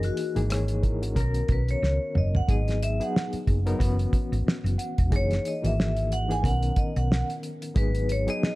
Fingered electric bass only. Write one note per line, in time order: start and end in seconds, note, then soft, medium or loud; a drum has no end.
0.36 1.12 G#1 medium
1.16 1.41 B1 medium
1.49 1.74 B1 medium
1.82 1.97 C#2 medium
2.15 2.40 F#1 medium
2.49 2.98 G#1 medium
3.33 muted fingered electric bass stroke soft
3.47 3.72 F#1 medium
3.80 4.05 F#1 loud
4.32 4.43 G#1 medium
4.46 muted fingered electric bass stroke soft
4.64 4.75 F#1 medium
4.99 5.12 E1 medium
5.12 5.37 F#1 loud
5.64 6.40 G#1 medium
6.44 6.69 B1 loud
6.96 7.21 B1 loud
7.76 8.26 G#1 loud